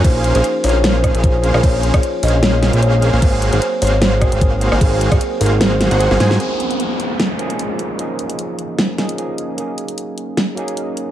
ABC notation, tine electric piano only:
X:1
M:4/4
L:1/16
Q:"Swing 16ths" 1/4=151
K:Db
V:1 name="Tine electric piano"
[F,B,DAc]8- [F,B,DAc]2 [F,B,DAc]6 | [F,B,DAc]8- [F,B,DAc]2 [F,B,CDA]2 [F,A,B,DA]4 | [G,B,CAf]8- [G,B,CAf]2 [G,B,CAf]6 | [G,B,CAf]8- [G,B,CAf]2 z [G,B,CFA] [G,B,CFA]4 |
[F,B,DEA]8- [F,B,DEA]2 [F,B,DEA]6 | [F,B,DEA]8- [F,B,DEA]2 [F,B,DEA]2 [F,B,DEA]4 | [G,B,DEA]8- [G,B,DEA]2 [G,B,DEA]6 |]